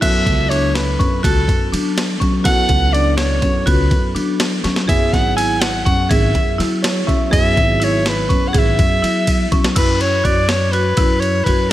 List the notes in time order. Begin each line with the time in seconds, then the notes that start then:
0.01 F#2 F#3 B3 E4 F#4 A4 E5, kick, crash, ride
0.27 C#2, kick, ride
0.50 D4 C#5, ride
0.75 B4, snare, ride
0.99 F#2 C#4, kick, ride
1.23 C#2 F#4 A4, kick, ride
1.48 F#2, kick, ride
1.72 F#3 D4, ride
1.98 snare, ride
2.20 F#3 C#4, kick, ride
2.43 F#2 F#3 B3 E4 F#4 A4 F#5, kick, ride
2.69 C#2, kick, ride
2.93 D4 D5, ride
3.17 C#5, snare, ride
3.42 F#2 C#4, kick, ride
3.66 C#2 F#4 B4, kick, ride
3.91 F#2, kick, ride
4.15 F#3 D4, ride
4.40 snare, ride
4.64 F#3 C#4, snare, ride
4.76 snare
4.87 F#2 F#3 B3 E4 G#4 E5, kick, ride
5.13 G#1 F#5, kick, snare, ride
5.37 E4 G#5, ride
5.61 F#5, snare, ride
5.85 F#2 C#4 F#5, kick, ride
6.09 G#1 G#4 E5, kick, ride
6.35 F#2, kick, ride
6.58 F#3 E4, snare, ride
6.83 C#5, snare, ride
7.07 F#3 C#4 E5, kick, ride
7.30 F#2 F#3 B3 E4 G#4 E5, kick, ride
7.57 G#1, kick, ride
7.80 E4 C#5, ride
8.06 B4, snare, ride
8.29 F#2 C#4, kick, ride
8.48 F#5
8.53 G#1 G#4, kick, ride
8.58 E5
8.79 F#2, kick, ride
9.02 F#3 E4, ride
9.27 kick, ride
9.52 F#3 C#4, kick, ride
9.64 snare
9.76 F#2 E4 B4, kick, crash, ride
10.01 C#5, ride
10.24 F#2 F#4 D5, kick, ride
10.49 C#5, snare, ride
10.72 F#4 B4, ride
10.97 F#2 E4, kick, ride
11.20 C#5, ride
11.44 F#2 F#4 B4, kick, ride